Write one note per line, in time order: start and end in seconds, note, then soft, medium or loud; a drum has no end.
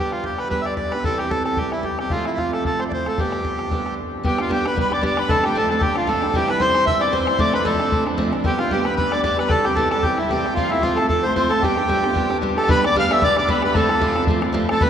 0.00 0.49 G3 medium
0.00 0.50 B3 medium
0.00 0.51 D4 medium
0.00 0.11 G4 medium
0.00 0.52 G4 medium
0.12 0.25 F4 medium
0.12 bodhran soft
0.24 0.40 G4 medium
0.24 bodhran medium
0.38 0.48 B4 medium
0.38 bodhran medium
0.50 0.92 G3 soft
0.50 0.93 B3 soft
0.50 0.93 D4 soft
0.50 0.92 G4 medium
0.50 0.62 B4 medium
0.50 bodhran medium
0.61 0.74 D5 medium
0.61 0.66 E5 medium
0.66 bodhran soft
0.71 bodhran soft
0.76 0.92 D5 medium
0.76 bodhran medium
0.85 bodhran soft
0.91 1.06 D4 soft
0.91 1.05 G4 soft
0.91 1.04 B4 medium
0.91 bodhran medium
0.95 1.05 B3 soft
1.04 1.58 C3 medium
1.04 1.57 E3 medium
1.04 1.57 G3 medium
1.04 1.58 C4 medium
1.04 1.59 G4 medium
1.04 1.18 A4 medium
1.04 bodhran medium
1.18 1.31 G4 medium
1.18 bodhran medium
1.30 1.43 A4 medium
1.30 bodhran medium
1.44 1.58 A4 medium
1.44 bodhran soft
1.56 1.99 E3 medium
1.56 2.00 G3 medium
1.56 2.00 C4 medium
1.56 1.71 G4 medium
1.56 1.99 G4 medium
1.56 bodhran medium
1.72 1.85 E4 medium
1.72 bodhran medium
1.78 bodhran soft
1.83 1.98 G4 medium
1.83 bodhran medium
1.91 bodhran soft
1.99 2.12 C4 soft
1.99 2.12 G4 medium
1.99 2.12 G4 soft
1.99 bodhran medium
2.03 2.13 G3 soft
2.10 2.64 F3 medium
2.10 2.65 C4 medium
2.10 2.25 F4 medium
2.10 bodhran medium
2.15 2.66 A3 medium
2.15 2.67 F4 medium
2.25 2.39 E4 medium
2.25 bodhran soft
2.37 2.51 F4 medium
2.37 bodhran medium
2.53 2.64 A4 medium
2.53 bodhran medium
2.65 3.07 F3 medium
2.65 3.05 A3 medium
2.65 3.06 C4 medium
2.65 3.04 F4 medium
2.65 2.80 A4 medium
2.65 bodhran medium
2.80 2.84 C5 medium
2.80 bodhran medium
2.85 2.92 D5 medium
2.85 bodhran soft
2.92 3.08 C5 medium
2.92 bodhran medium
3.05 3.18 A3 soft
3.05 3.19 C4 soft
3.05 3.18 F4 soft
3.05 3.19 A4 medium
3.05 bodhran medium
3.18 3.70 G3 medium
3.18 3.71 B3 medium
3.18 3.72 D4 medium
3.18 3.94 G4 medium
3.18 3.72 G4 medium
3.18 bodhran medium
3.32 bodhran soft
3.45 bodhran medium
3.59 bodhran soft
3.71 3.98 G3 medium
3.71 3.98 B3 medium
3.71 4.25 D4 medium
3.71 3.99 G4 medium
3.71 bodhran medium
3.86 bodhran soft
3.92 bodhran soft
4.23 4.38 G3 medium
4.23 4.38 B3 medium
4.23 4.37 D4 medium
4.23 4.35 G4 medium
4.23 4.40 G4 medium
4.23 4.42 G5 medium
4.23 bodhran medium
4.37 4.48 B3 soft
4.37 4.49 D4 soft
4.37 4.50 G4 medium
4.37 4.51 F5 medium
4.37 bodhran medium
4.41 4.51 F4 medium
4.49 4.64 G3 medium
4.49 4.65 B3 medium
4.49 4.64 D4 medium
4.49 4.62 G4 medium
4.49 4.66 G4 medium
4.49 4.65 G5 medium
4.49 bodhran medium
4.63 4.76 B3 soft
4.63 4.76 D4 medium
4.63 4.76 G4 medium
4.63 4.78 B4 medium
4.63 bodhran medium
4.67 4.77 B5 medium
4.76 4.91 G3 medium
4.76 4.91 B3 medium
4.76 4.91 D4 medium
4.76 4.89 G4 medium
4.76 4.95 B5 medium
4.76 bodhran medium
4.80 4.92 B4 medium
4.90 5.01 B3 soft
4.90 5.01 D4 soft
4.90 5.02 G4 soft
4.90 5.04 D5 medium
4.90 5.04 D6 medium
4.90 bodhran medium
4.98 5.17 G3 medium
4.98 bodhran soft
5.02 5.17 B3 medium
5.02 5.17 D4 medium
5.02 5.15 G4 medium
5.02 5.19 D5 medium
5.02 5.20 D6 medium
5.02 bodhran medium
5.10 bodhran soft
5.16 5.30 B3 soft
5.16 5.29 D4 soft
5.16 5.29 G4 soft
5.16 5.30 B4 medium
5.16 5.34 B5 medium
5.16 bodhran medium
5.29 5.44 F2 medium
5.29 5.44 C3 medium
5.29 5.44 F3 medium
5.29 5.43 A3 medium
5.29 5.43 C4 medium
5.29 5.42 D4 medium
5.29 5.44 A4 loud
5.29 5.47 A5 medium
5.29 bodhran medium
5.43 5.55 F3 soft
5.43 5.55 A3 soft
5.43 5.55 C4 soft
5.43 5.55 D4 soft
5.43 5.56 G4 medium
5.43 5.60 G5 medium
5.43 bodhran medium
5.55 5.70 F2 medium
5.55 5.70 C3 medium
5.55 5.70 F3 medium
5.55 5.70 A3 medium
5.55 5.71 C4 medium
5.55 5.68 D4 medium
5.55 5.69 A4 medium
5.55 5.83 A5 medium
5.55 bodhran medium
5.69 5.79 F3 medium
5.69 5.81 A3 medium
5.69 5.80 C4 soft
5.69 5.82 D4 medium
5.69 5.81 A4 medium
5.69 bodhran soft
5.81 5.96 F3 medium
5.81 5.95 A3 medium
5.81 5.95 C4 medium
5.81 5.94 D4 medium
5.81 5.97 G4 medium
5.81 5.99 G5 medium
5.81 bodhran medium
5.95 6.07 F3 soft
5.95 6.08 A3 soft
5.95 6.08 C4 soft
5.95 6.08 D4 medium
5.95 6.09 F4 medium
5.95 6.10 F5 medium
5.95 bodhran medium
6.02 bodhran soft
6.07 6.23 F2 medium
6.07 6.23 C3 medium
6.07 6.23 F3 medium
6.07 6.23 A3 medium
6.07 6.23 C4 medium
6.07 6.21 D4 medium
6.07 6.35 A4 medium
6.07 6.37 A5 medium
6.07 bodhran medium
6.14 bodhran soft
6.22 6.35 F3 soft
6.22 6.35 A3 soft
6.22 6.35 C4 soft
6.22 6.35 D4 soft
6.22 bodhran medium
6.34 6.49 C3 medium
6.34 6.50 E3 medium
6.34 6.50 G3 medium
6.34 6.49 C4 medium
6.34 6.47 E4 medium
6.34 6.50 G4 medium
6.34 6.51 G5 medium
6.34 bodhran medium
6.48 6.59 G3 soft
6.48 6.60 C4 soft
6.48 6.60 E4 medium
6.48 6.62 B4 loud
6.48 6.60 B5 medium
6.48 bodhran medium
6.60 6.75 C3 medium
6.60 6.75 E3 medium
6.60 6.75 G3 medium
6.60 6.75 C4 medium
6.60 6.73 E4 medium
6.60 6.85 C5 loud
6.60 6.85 C6 medium
6.60 bodhran medium
6.74 6.86 G3 soft
6.74 6.86 C4 medium
6.74 6.87 E4 soft
6.74 bodhran medium
6.86 7.01 E3 medium
6.86 7.02 G3 medium
6.86 7.01 C4 medium
6.86 6.99 E4 medium
6.86 7.02 E5 loud
6.86 7.03 E6 medium
6.86 bodhran medium
7.01 7.11 G3 soft
7.01 7.12 C4 soft
7.01 7.12 E4 medium
7.01 7.14 D5 medium
7.01 7.15 D6 medium
7.01 bodhran medium
7.12 7.27 C3 medium
7.12 7.27 E3 medium
7.12 7.28 G3 medium
7.12 7.27 C4 medium
7.12 7.25 E4 medium
7.12 7.40 C5 medium
7.12 7.39 C6 medium
7.12 bodhran medium
7.20 bodhran soft
7.27 7.39 G3 soft
7.27 7.38 C4 soft
7.27 7.39 E4 soft
7.27 bodhran medium
7.38 7.54 F2 medium
7.38 7.54 C3 medium
7.38 7.54 F3 medium
7.38 7.53 A3 medium
7.38 7.54 C4 medium
7.38 7.52 D4 medium
7.38 7.53 D5 medium
7.38 7.54 D6 medium
7.38 bodhran medium
7.53 7.65 F3 soft
7.53 7.66 A3 soft
7.53 7.65 C4 soft
7.53 7.66 D4 medium
7.53 7.67 B4 loud
7.53 7.65 B5 medium
7.53 bodhran medium
7.65 7.80 F2 medium
7.65 7.81 C3 medium
7.65 7.80 F3 medium
7.65 7.79 A3 medium
7.65 7.80 C4 medium
7.65 7.78 D4 medium
7.65 8.04 A4 medium
7.65 7.71 B5 medium
7.65 bodhran medium
7.70 8.04 A5 medium
7.79 7.89 F3 soft
7.79 7.91 A3 medium
7.79 7.90 C4 soft
7.79 7.92 D4 medium
7.79 bodhran medium
7.90 8.06 F3 medium
7.90 8.05 A3 medium
7.90 8.06 C4 medium
7.90 8.04 D4 medium
7.90 bodhran medium
8.05 8.17 F3 soft
8.05 8.17 A3 soft
8.05 8.17 C4 soft
8.05 8.17 D4 medium
8.05 bodhran medium
8.13 bodhran soft
8.17 8.33 F2 medium
8.17 8.33 C3 medium
8.17 8.33 F3 medium
8.17 8.31 A3 medium
8.17 8.33 C4 medium
8.17 8.31 D4 medium
8.17 bodhran medium
8.26 bodhran soft
8.32 8.43 F3 soft
8.32 8.45 A3 soft
8.32 8.44 C4 soft
8.32 8.44 D4 soft
8.32 bodhran medium
8.44 8.59 G3 medium
8.44 8.60 B3 medium
8.44 8.59 D4 medium
8.44 8.59 G4 loud
8.44 8.57 G4 medium
8.44 8.59 G5 medium
8.44 bodhran medium
8.58 8.71 B3 soft
8.58 8.72 D4 medium
8.58 8.71 F4 medium
8.58 8.71 G4 soft
8.58 8.71 F5 medium
8.58 bodhran medium
8.69 8.86 G3 medium
8.69 8.86 B3 medium
8.69 8.85 D4 medium
8.69 8.86 G4 medium
8.69 8.87 G5 medium
8.69 bodhran medium
8.74 8.84 G4 medium
8.85 8.98 B3 soft
8.85 8.98 D4 soft
8.85 8.98 G4 medium
8.85 8.95 B4 medium
8.85 8.98 B5 medium
8.85 bodhran soft
8.96 9.12 G3 medium
8.96 9.13 B3 medium
8.96 9.13 D4 medium
8.96 9.12 G4 medium
8.96 9.12 B4 medium
8.96 9.15 B5 medium
8.96 bodhran medium
9.12 9.24 B3 soft
9.12 9.24 D4 soft
9.12 9.25 G4 soft
9.12 9.21 D5 medium
9.12 9.25 D6 medium
9.12 bodhran medium
9.18 bodhran soft
9.23 9.39 G3 medium
9.23 9.39 B3 medium
9.23 9.38 D4 medium
9.23 9.36 G4 medium
9.23 9.37 D5 medium
9.23 9.39 D6 medium
9.23 bodhran medium
9.31 bodhran soft
9.37 9.51 B3 soft
9.37 9.51 D4 soft
9.37 9.50 G4 medium
9.37 9.51 B4 medium
9.37 9.50 B5 medium
9.37 bodhran medium
9.49 9.66 C3 medium
9.49 9.66 E3 medium
9.49 9.66 G3 medium
9.49 9.65 C4 medium
9.49 9.63 G4 medium
9.49 9.65 A4 loud
9.49 9.53 G5 medium
9.49 9.68 A5 medium
9.49 bodhran medium
9.65 9.76 G3 soft
9.65 9.77 C4 medium
9.65 9.76 G4 medium
9.65 9.77 G4 soft
9.65 9.79 G5 medium
9.65 bodhran medium
9.75 9.92 C3 medium
9.75 9.92 E3 medium
9.75 9.92 G3 medium
9.75 9.92 C4 medium
9.75 9.92 G4 medium
9.75 9.89 A4 medium
9.75 9.92 A5 medium
9.75 bodhran medium
9.90 10.04 G4 medium
9.90 10.03 A4 medium
9.90 10.06 A5 medium
9.90 bodhran medium
9.94 10.04 G3 soft
9.94 10.05 C4 soft
10.02 10.19 E3 medium
10.02 10.19 G3 medium
10.02 10.18 G4 medium
10.02 10.21 G5 medium
10.02 bodhran medium
10.06 10.19 C4 medium
10.06 10.18 G4 medium
10.17 10.31 C4 soft
10.17 10.30 E4 medium
10.17 10.31 G4 medium
10.17 10.33 E5 medium
10.17 bodhran soft
10.22 10.31 G3 soft
10.22 bodhran soft
10.29 10.45 C3 medium
10.29 10.46 E3 medium
10.29 10.46 G3 medium
10.29 10.45 C4 medium
10.29 10.54 G4 medium
10.29 10.58 G5 medium
10.29 bodhran medium
10.33 10.44 G4 medium
10.37 bodhran soft
10.45 10.57 G3 soft
10.45 10.56 C4 soft
10.45 10.57 G4 soft
10.45 bodhran medium
10.54 10.72 F3 medium
10.54 10.72 C4 medium
10.54 10.70 F4 medium
10.54 bodhran medium
10.58 10.72 A3 medium
10.58 10.70 F4 medium
10.58 10.73 F5 medium
10.69 10.84 A3 soft
10.69 10.83 E4 medium
10.69 10.84 F4 medium
10.69 10.86 E5 medium
10.69 bodhran soft
10.74 10.83 C4 soft
10.81 10.98 F3 medium
10.81 10.99 A3 medium
10.81 10.99 C4 medium
10.81 10.97 F4 loud
10.81 10.98 F5 medium
10.81 bodhran medium
10.85 10.98 F4 medium
10.95 11.10 F4 medium
10.95 11.06 A4 medium
10.95 bodhran medium
11.00 11.11 A3 soft
11.00 11.10 C4 soft
11.00 11.10 A5 medium
11.08 11.25 F3 medium
11.08 11.25 C4 medium
11.08 11.24 A4 medium
11.08 11.28 A5 medium
11.08 bodhran medium
11.12 11.25 A3 medium
11.12 11.24 F4 medium
11.23 11.36 A3 soft
11.23 11.37 F4 soft
11.23 11.34 C5 medium
11.27 11.35 C4 soft
11.27 11.38 C6 medium
11.27 bodhran soft
11.35 11.51 F3 medium
11.35 11.50 A3 medium
11.35 11.51 C4 medium
11.35 11.49 F4 medium
11.35 11.51 C5 medium
11.35 11.55 C6 medium
11.35 bodhran medium
11.43 bodhran soft
11.49 11.63 A3 soft
11.49 11.63 F4 medium
11.49 11.62 A4 medium
11.49 bodhran medium
11.53 11.63 C4 soft
11.53 11.67 A5 medium
11.61 11.77 G3 medium
11.61 11.78 B3 medium
11.61 11.78 D4 medium
11.61 12.38 G4 medium
11.61 11.76 G4 medium
11.61 12.44 G5 medium
11.61 bodhran medium
11.77 11.88 B3 soft
11.77 11.89 D4 soft
11.77 11.89 G4 medium
11.77 bodhran medium
11.88 12.04 G3 medium
11.88 12.04 B3 medium
11.88 12.04 D4 medium
11.88 12.02 G4 medium
11.88 bodhran medium
12.03 12.14 B3 medium
12.03 12.15 D4 medium
12.03 12.15 G4 medium
12.03 bodhran medium
12.14 12.30 G3 medium
12.14 12.30 B3 medium
12.14 12.30 D4 medium
12.14 12.29 G4 medium
12.14 bodhran medium
12.30 12.41 B3 soft
12.30 12.41 D4 soft
12.30 12.42 G4 medium
12.30 bodhran medium
12.37 bodhran soft
12.41 12.56 G3 medium
12.41 12.57 B3 medium
12.41 12.55 D4 medium
12.41 12.54 G4 medium
12.41 bodhran medium
12.50 bodhran soft
12.56 12.67 B3 soft
12.56 12.68 D4 soft
12.56 12.68 G4 medium
12.56 12.69 A4 medium
12.56 12.68 A5 medium
12.56 bodhran medium
12.64 bodhran medium
12.68 12.83 G3 medium
12.68 12.83 B3 medium
12.68 12.83 D4 medium
12.68 12.82 G4 loud
12.68 12.85 B4 loud
12.68 12.86 B5 medium
12.68 bodhran loud
12.83 12.95 B3 soft
12.83 12.95 D4 medium
12.83 12.95 G4 medium
12.83 12.96 D5 loud
12.83 12.98 D6 medium
12.83 bodhran medium
12.91 bodhran soft
12.95 13.10 G3 medium
12.95 13.11 B3 medium
12.95 13.09 D4 medium
12.95 13.08 G4 loud
12.95 13.12 F5 loud
12.95 13.12 F6 medium
12.95 bodhran medium
13.10 13.22 B3 soft
13.10 13.22 D4 medium
13.10 13.22 G4 medium
13.10 13.23 E5 medium
13.10 13.21 E6 medium
13.10 bodhran medium
13.22 13.37 G3 medium
13.22 13.37 B3 medium
13.22 13.37 D4 medium
13.22 13.36 G4 medium
13.22 13.37 D5 loud
13.22 13.36 D6 medium
13.22 bodhran medium
13.30 bodhran soft
13.37 13.48 B3 soft
13.37 13.48 D4 medium
13.37 13.49 G4 medium
13.37 13.50 D5 medium
13.37 13.48 D6 medium
13.37 bodhran medium
13.48 13.63 G3 medium
13.48 13.64 B3 medium
13.48 13.63 D4 medium
13.48 13.62 G4 medium
13.48 13.63 B4 medium
13.48 13.62 B5 medium
13.48 bodhran medium
13.62 13.75 B3 soft
13.62 13.76 D4 soft
13.62 13.75 G4 medium
13.62 13.76 B4 medium
13.62 13.76 B5 medium
13.62 bodhran medium
13.74 13.90 F3 medium
13.74 13.89 A3 loud
13.74 13.90 C4 medium
13.74 13.87 F4 medium
13.74 14.24 A4 medium
13.74 13.92 A5 medium
13.74 bodhran medium
13.88 14.01 A3 medium
13.88 14.01 C4 soft
13.88 14.01 F4 medium
13.88 13.96 B5 medium
13.88 bodhran medium
13.95 14.09 A5 medium
13.95 bodhran soft
14.01 14.16 F3 medium
14.01 14.16 A3 medium
14.01 14.16 C4 medium
14.01 14.14 F4 medium
14.01 bodhran medium
14.08 14.13 G5 medium
14.08 14.28 A5 medium
14.16 14.28 A3 medium
14.16 14.27 C4 medium
14.16 14.28 F4 medium
14.16 bodhran medium
14.27 14.43 F3 medium
14.27 14.42 A3 medium
14.27 14.43 C4 medium
14.27 14.41 F4 medium
14.27 bodhran medium
14.35 bodhran soft
14.42 14.53 A3 medium
14.42 14.52 C4 soft
14.42 14.54 F4 medium
14.42 bodhran medium
14.53 14.68 F3 medium
14.53 14.69 A3 medium
14.53 14.69 C4 medium
14.53 14.68 F4 loud
14.53 bodhran medium
14.69 14.81 A3 medium
14.69 14.81 C4 soft
14.69 14.81 F4 soft
14.69 14.82 A4 medium
14.69 14.81 A5 medium
14.69 bodhran medium
14.81 14.90 G3 medium
14.81 14.90 B3 medium
14.81 14.90 D4 medium
14.81 14.90 G4 loud
14.81 14.90 B4 loud
14.81 14.90 B5 medium
14.81 bodhran medium